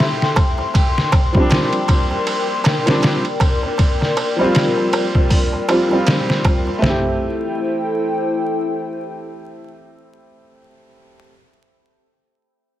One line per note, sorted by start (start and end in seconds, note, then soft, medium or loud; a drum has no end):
0.00 0.71 A4 medium
0.00 0.71 E5 medium
0.00 6.79 G5 medium
0.00 6.79 C6 medium
0.00 snare loud
0.22 snare soft
0.36 kick medium
0.36 ride medium
0.36 darbuka tek medium
0.58 darbuka tek soft
0.74 6.79 A#4 medium
0.74 6.78 D5 medium
0.74 kick medium
0.74 ride medium
0.74 darbuka tek soft
0.98 snare soft
1.12 kick medium
1.12 ride medium
1.12 darbuka tek medium
1.32 2.80 F3 medium
1.32 2.81 G3 medium
1.32 kick medium
1.32 darbuka tek soft
1.37 2.83 C4 medium
1.37 2.84 D4 medium
1.50 snare loud
1.50 ride medium
1.50 darbuka tek soft
1.73 ride soft
1.88 kick medium
1.88 ride medium
1.88 darbuka tek medium
2.11 darbuka tek soft
2.27 ride medium
2.27 darbuka tek soft
2.64 snare medium
2.64 ride medium
2.64 darbuka tek medium
2.86 3.21 F3 medium
2.86 3.22 G3 medium
2.86 3.22 C4 medium
2.86 3.23 D4 medium
2.86 snare medium
2.86 ride medium
2.86 darbuka tek soft
3.02 snare loud
3.02 ride medium
3.02 darbuka tek soft
3.25 ride soft
3.40 kick medium
3.40 ride medium
3.40 darbuka tek medium
3.63 darbuka tek soft
3.78 kick loud
3.78 ride medium
3.78 darbuka tek soft
4.01 snare soft
4.01 darbuka tek soft
4.17 ride medium
4.17 darbuka tek medium
4.36 5.64 F3 medium
4.36 5.65 G3 medium
4.36 darbuka tek soft
4.41 5.67 C4 medium
4.41 5.68 F4 medium
4.55 snare loud
4.55 ride medium
4.55 darbuka tek soft
4.78 darbuka tek soft
4.93 ride medium
4.93 darbuka tek medium
5.15 kick medium
5.15 darbuka tek soft
5.30 kick medium
5.30 open hi-hat medium
5.30 darbuka tek soft
5.53 darbuka tek soft
5.68 5.85 F3 medium
5.68 5.86 G3 medium
5.68 5.86 C4 medium
5.68 5.87 F4 medium
5.68 ride medium
5.68 darbuka tek medium
5.88 6.79 F3 medium
5.88 6.81 G3 medium
5.88 darbuka tek soft
5.93 6.81 C4 medium
5.93 6.83 F4 medium
6.06 snare loud
6.06 ride medium
6.06 darbuka tek soft
6.29 snare soft
6.29 darbuka tek soft
6.45 kick medium
6.45 ride medium
6.45 darbuka tek medium
6.67 darbuka tek soft
6.79 11.30 A3 medium
6.79 11.32 C4 medium
6.79 10.62 E4 medium
6.79 10.62 A4 medium
6.79 10.62 C5 medium
6.79 10.62 G5 medium
6.79 floor tom medium
6.84 11.34 E4 medium
6.84 snare medium
6.89 11.36 G4 medium